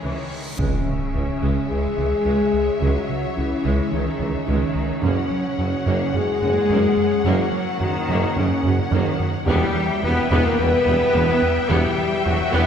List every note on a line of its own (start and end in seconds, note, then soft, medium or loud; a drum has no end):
0.00 0.11 C#2 medium
0.00 0.20 C#3 medium
0.00 0.29 E3 soft
0.00 0.58 G#3 medium
0.00 0.35 C#4 soft
0.00 0.57 C#4 medium
0.00 0.55 D#4 medium
0.00 0.35 E4 medium
0.00 0.35 G#4 soft
0.00 0.28 C#5 medium
0.00 reverse cymbal medium
0.04 0.12 C#3 medium
0.04 0.56 D#3 medium
0.58 0.67 C#2 medium
0.58 0.70 C#2 medium
0.58 0.76 C#2 medium
0.58 0.76 C#3 medium
0.58 1.71 C#3 medium
0.58 0.84 G#3 medium
0.58 5.00 G#3 medium
0.58 1.70 C#4 medium
0.58 4.99 C#4 medium
0.58 4.99 G#4 medium
0.58 4.99 C#5 medium
0.58 5.00 C#5 medium
0.58 4.99 E5 soft
0.58 impact medium
0.87 1.03 C#3 medium
1.14 1.22 C#2 soft
1.14 1.26 C#2 soft
1.14 1.31 C#2 medium
1.14 1.22 E3 soft
1.14 1.32 C#4 medium
1.42 1.50 C#2 medium
1.42 1.54 C#2 medium
1.42 1.59 C#2 medium
1.42 1.59 C#3 medium
1.42 1.68 G#3 medium
1.68 1.78 C#2 soft
1.68 1.82 C#2 soft
1.68 1.87 C#2 medium
1.68 1.78 C#3 soft
1.68 1.87 E3 medium
1.68 2.79 G#3 medium
1.68 2.80 G#4 loud
1.97 2.05 C#2 soft
1.97 2.14 C#2 medium
1.97 2.09 C#2 soft
1.97 2.15 E3 medium
1.97 2.06 E3 medium
2.26 2.42 C#2 medium
2.26 2.37 C#2 medium
2.26 2.34 C#2 medium
2.26 2.43 C#3 medium
2.26 2.52 G#3 medium
2.54 2.70 C#2 medium
2.81 2.89 C#2 medium
2.81 2.98 C#2 medium
2.81 2.93 C#2 medium
2.81 2.98 C#3 medium
2.81 3.37 F#3 medium
2.81 3.07 G#3 medium
2.81 3.36 F#4 medium
3.10 3.26 C#3 medium
3.37 3.45 C#2 soft
3.37 3.49 C#2 medium
3.37 3.54 C#2 medium
3.37 3.93 E3 medium
3.37 3.46 E3 medium
3.37 3.54 C#4 medium
3.37 3.91 E4 medium
3.64 3.81 C#2 loud
3.64 3.72 C#2 medium
3.64 3.76 C#2 medium
3.64 3.81 C#3 medium
3.64 3.91 G#3 medium
3.91 4.01 C#2 soft
3.91 4.09 C#2 medium
3.91 4.04 C#2 medium
3.91 4.01 C#3 medium
3.91 4.47 D#3 medium
3.91 4.10 E3 medium
3.91 4.47 D#4 medium
4.19 4.36 C#2 medium
4.19 4.28 C#2 medium
4.19 4.32 C#2 medium
4.19 4.37 E3 medium
4.19 4.29 E3 medium
4.47 4.56 C#2 medium
4.47 4.59 C#2 medium
4.47 4.65 C#2 medium
4.47 4.64 C#3 medium
4.47 5.03 D#3 medium
4.47 4.74 G#3 medium
4.47 5.03 D#4 medium
4.75 4.92 C#2 medium
5.02 5.14 F#1 medium
5.02 5.20 F#2 medium
5.02 5.11 F#2 medium
5.02 6.15 C#3 medium
5.02 5.20 F#3 medium
5.02 9.48 A#3 medium
5.02 5.30 A#3 medium
5.02 6.14 C#4 medium
5.02 9.44 C#4 medium
5.02 9.48 F#4 medium
5.02 9.48 A#4 medium
5.02 9.44 C#5 medium
5.02 9.44 F#5 medium
5.31 5.48 F#3 medium
5.58 5.70 F#1 medium
5.58 5.75 F#2 medium
5.58 5.67 F#2 medium
5.58 5.68 F#3 medium
5.58 5.76 F#4 medium
5.86 5.98 F#1 medium
5.86 6.03 F#2 loud
5.86 5.94 F#2 medium
5.86 6.04 F#3 medium
5.86 6.14 A#3 medium
6.14 6.25 F#1 medium
6.14 6.31 F#2 medium
6.14 6.22 F#2 medium
6.14 6.24 C#3 medium
6.14 7.26 G#3 medium
6.14 6.32 A#3 medium
6.14 7.26 G#4 loud
6.42 6.54 F#1 medium
6.42 6.59 F#2 medium
6.42 6.51 F#2 medium
6.42 6.50 F#3 medium
6.42 6.59 A#3 medium
6.70 6.82 F#1 medium
6.70 6.86 F#2 medium
6.70 6.78 F#2 medium
6.70 6.87 F#3 medium
6.70 6.97 A#3 medium
6.97 7.14 F#2 medium
7.24 7.37 F#1 loud
7.24 7.41 F#2 loud
7.24 7.34 F#2 loud
7.24 7.42 F#3 loud
7.24 7.80 F#3 medium
7.24 7.52 A#3 medium
7.24 7.82 F#4 loud
7.52 7.69 F#3 medium
7.80 7.93 F#1 medium
7.80 7.97 F#2 medium
7.80 7.89 F#2 medium
7.80 8.37 D#3 loud
7.80 7.91 F#3 medium
7.80 8.37 D#4 loud
7.80 7.98 F#4 medium
8.08 8.21 F#1 medium
8.08 8.25 F#2 loud
8.08 8.17 F#2 medium
8.08 8.26 F#3 loud
8.08 8.36 A#3 medium
8.36 8.49 F#1 medium
8.36 8.53 F#2 medium
8.36 8.44 F#2 medium
8.36 8.93 C#3 medium
8.36 8.47 C#3 medium
8.36 8.53 A#3 medium
8.36 8.93 C#4 loud
8.63 8.76 F#1 medium
8.63 8.80 F#2 medium
8.63 8.72 F#2 medium
8.63 8.75 F#3 medium
8.63 8.82 A#3 medium
8.91 9.04 F#1 loud
8.91 8.99 F#2 medium
8.91 9.09 F#2 medium
8.91 9.20 D#3 medium
8.91 9.09 F#3 loud
8.91 9.19 A#3 medium
8.91 9.20 D#4 medium
9.20 9.37 F#2 medium
9.46 9.59 E1 loud
9.46 9.55 E2 loud
9.46 9.64 E2 loud
9.46 9.65 E3 loud
9.46 10.00 G3 loud
9.46 12.67 G3 medium
9.46 9.74 B3 loud
9.46 9.99 G4 loud
9.46 12.67 G4 medium
9.46 12.67 E5 medium
9.46 12.67 G5 medium
9.50 12.67 E4 medium
9.50 12.67 B4 medium
9.75 9.92 E3 medium
10.03 10.15 E1 medium
10.03 10.11 E2 medium
10.03 10.20 E2 medium
10.03 10.12 G3 medium
10.03 10.30 B3 loud
10.03 10.21 E4 medium
10.03 10.31 B4 loud
10.30 10.42 E1 loud
10.30 10.39 E2 loud
10.30 10.48 E2 loud
10.30 10.48 E3 loud
10.30 10.45 B3 loud
10.30 10.58 B3 loud
10.30 10.45 B4 loud
10.46 10.59 A#3 medium
10.46 10.60 A#4 loud
10.58 10.71 E1 medium
10.58 10.66 E2 medium
10.58 10.76 E2 medium
10.58 10.66 E3 medium
10.58 10.76 G3 medium
10.58 11.70 B3 loud
10.58 11.71 B4 loud
10.86 10.98 E1 medium
10.86 10.94 E2 medium
10.86 11.03 E2 medium
10.86 11.04 G3 medium
10.86 10.95 G3 medium
11.13 11.26 E1 loud
11.13 11.31 E2 medium
11.13 11.23 E2 loud
11.13 11.31 E3 loud
11.13 11.40 B3 medium
11.42 11.59 E2 medium
11.70 11.81 E1 loud
11.70 11.78 E2 loud
11.70 11.87 E2 loud
11.70 11.87 E3 loud
11.70 12.26 G3 loud
11.70 11.96 B3 loud
11.70 12.25 G4 loud
11.98 12.15 E3 medium
12.26 12.37 E1 medium
12.26 12.42 E2 medium
12.26 12.34 E2 medium
12.26 12.54 F#3 loud
12.26 12.34 G3 medium
12.26 12.43 E4 medium
12.26 12.53 F#4 loud
12.53 12.65 E1 medium
12.53 12.61 E2 medium
12.53 12.67 E2 loud
12.53 12.67 E3 loud
12.53 12.67 E3 medium
12.53 12.67 B3 loud
12.53 12.67 E4 loud